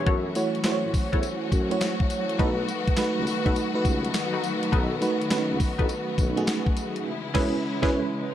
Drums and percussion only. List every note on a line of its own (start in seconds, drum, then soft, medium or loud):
0.06 kick loud
0.06 closed hi-hat medium
0.35 closed hi-hat medium
0.35 tambourine medium
0.55 closed hi-hat medium
0.64 snare loud
0.64 clap loud
0.64 closed hi-hat medium
0.64 tambourine medium
0.94 kick medium
0.94 open hi-hat medium
0.94 tambourine medium
1.13 kick medium
1.13 closed hi-hat medium
1.23 closed hi-hat medium
1.23 tambourine medium
1.52 kick medium
1.52 closed hi-hat medium
1.52 tambourine medium
1.71 closed hi-hat medium
1.81 snare loud
1.81 clap loud
1.81 closed hi-hat medium
1.81 tambourine loud
2.00 kick medium
2.10 closed hi-hat medium
2.10 tambourine medium
2.29 closed hi-hat medium
2.39 kick loud
2.39 closed hi-hat medium
2.68 closed hi-hat medium
2.68 tambourine medium
2.88 kick loud
2.88 closed hi-hat medium
2.97 snare loud
2.97 clap loud
2.97 closed hi-hat medium
2.97 tambourine loud
3.27 open hi-hat medium
3.27 tambourine medium
3.46 kick medium
3.46 closed hi-hat medium
3.56 closed hi-hat medium
3.56 tambourine medium
3.85 kick loud
3.85 closed hi-hat medium
3.85 tambourine medium
4.05 closed hi-hat medium
4.14 snare loud
4.14 clap loud
4.14 closed hi-hat medium
4.14 tambourine loud
4.44 closed hi-hat medium
4.44 tambourine medium
4.63 closed hi-hat medium
4.73 kick loud
4.73 closed hi-hat medium
5.02 closed hi-hat medium
5.02 tambourine medium
5.22 closed hi-hat medium
5.31 snare loud
5.31 clap loud
5.31 closed hi-hat medium
5.31 tambourine medium
5.60 kick medium
5.60 open hi-hat medium
5.60 tambourine medium
5.79 kick medium
5.79 closed hi-hat medium
5.89 closed hi-hat medium
5.89 tambourine medium
6.18 kick loud
6.18 closed hi-hat medium
6.18 tambourine medium
6.37 closed hi-hat medium
6.47 snare loud
6.47 clap loud
6.47 closed hi-hat medium
6.47 tambourine loud
6.66 kick loud
6.77 closed hi-hat medium
6.77 tambourine medium
6.96 closed hi-hat medium
7.35 kick loud
7.35 snare loud
7.35 crash medium
7.83 kick loud
7.83 snare loud